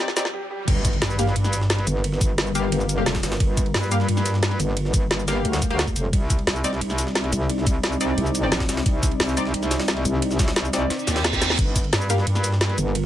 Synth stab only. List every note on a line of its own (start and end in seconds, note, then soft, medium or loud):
0.17 0.23 C4 medium
0.17 0.23 D#4 medium
0.17 0.23 D5 loud
1.19 1.25 A#3 medium
1.19 1.25 G4 medium
1.19 1.25 F5 medium
2.55 2.96 A#3 medium
2.55 2.96 G4 medium
2.55 2.96 F5 loud
2.98 3.04 A#3 medium
2.98 3.04 G4 medium
2.98 3.04 F5 medium
3.91 3.98 A#3 medium
3.91 3.98 G4 medium
3.91 3.98 F5 medium
5.28 5.68 A#3 medium
5.28 5.68 G4 medium
5.28 5.68 F5 loud
5.70 5.77 A#3 medium
5.70 5.77 G4 medium
5.70 5.77 F5 medium
6.64 6.71 C4 medium
6.64 6.71 D#4 medium
6.64 6.71 D5 medium
8.01 8.41 C4 medium
8.01 8.41 D#4 medium
8.01 8.41 D5 loud
8.43 8.50 C4 medium
8.43 8.50 D#4 medium
8.43 8.50 D5 medium
9.37 9.43 C4 medium
9.37 9.43 D#4 medium
9.37 9.43 D5 medium
10.73 11.14 C4 medium
10.73 11.14 D#4 medium
10.73 11.14 D5 loud
12.10 12.16 A#3 medium
12.10 12.16 G4 medium
12.10 12.16 F5 medium